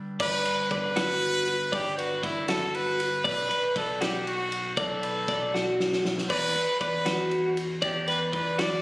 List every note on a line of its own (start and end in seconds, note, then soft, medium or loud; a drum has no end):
0.00 0.97 G2 medium
0.00 0.98 D3 medium
0.20 0.44 G1 loud
0.20 0.68 B4 loud
0.20 0.45 D5 medium
0.20 kick loud
0.20 crash loud
0.45 0.71 B4 medium
0.45 ride medium
0.71 1.69 G1 medium
0.71 1.75 B4 loud
0.71 0.97 D5 medium
0.71 kick medium
0.71 ride medium
0.96 1.47 F#4 medium
0.96 snare loud
0.96 ride loud
1.22 ride medium
1.47 ride medium
1.72 2.20 G1 loud
1.72 1.97 G4 loud
1.72 1.98 D5 medium
1.72 kick loud
1.72 ride loud
1.98 2.22 F#4 loud
1.98 2.23 B4 medium
1.98 ride medium
2.23 3.21 G1 medium
2.23 2.47 E4 medium
2.23 2.49 D5 medium
2.23 kick medium
2.23 ride medium
2.48 3.00 F#4 medium
2.48 2.76 A4 loud
2.48 snare loud
2.48 ride loud
2.74 3.25 B4 loud
2.74 ride medium
3.00 ride medium
3.24 3.49 B1 loud
3.24 3.73 B4 loud
3.24 3.49 D5 loud
3.24 kick loud
3.24 ride loud
3.50 3.76 B4 medium
3.50 ride medium
3.76 4.74 B1 medium
3.76 4.03 A4 medium
3.76 4.01 D5 medium
3.76 kick medium
3.76 ride medium
4.01 4.52 F#4 medium
4.01 4.26 G4 medium
4.01 snare loud
4.01 ride loud
4.27 4.74 F#4 loud
4.27 ride medium
4.52 ride medium
4.77 5.25 B1 loud
4.77 5.76 A4 loud
4.77 5.03 D5 loud
4.77 kick loud
4.77 ride loud
5.03 5.28 B4 medium
5.03 ride medium
5.28 6.26 B1 medium
5.28 5.54 D5 medium
5.28 kick medium
5.28 ride medium
5.54 6.05 F#4 medium
5.54 snare medium
5.80 snare medium
5.93 snare medium
6.05 snare loud
6.18 snare loud
6.29 6.54 E2 loud
6.29 6.77 B4 loud
6.29 6.55 D5 medium
6.29 kick loud
6.29 crash loud
6.56 6.80 B4 medium
6.56 ride medium
6.80 7.79 E2 medium
6.80 7.53 B4 loud
6.80 7.06 D5 medium
6.80 kick medium
6.80 ride medium
7.06 7.57 F#4 medium
7.06 snare loud
7.06 ride loud
7.31 ride medium
7.57 ride medium
7.82 8.30 E2 loud
7.82 8.07 G4 medium
7.82 8.07 D5 medium
7.82 kick loud
7.82 ride loud
8.08 8.32 B4 medium
8.08 8.20 B4 loud
8.08 ride medium
8.32 8.82 E2 medium
8.32 8.61 B4 loud
8.32 8.58 D5 medium
8.32 kick medium
8.32 ride medium
8.59 8.82 F#4 medium
8.59 8.82 D5 loud
8.59 snare loud
8.59 ride loud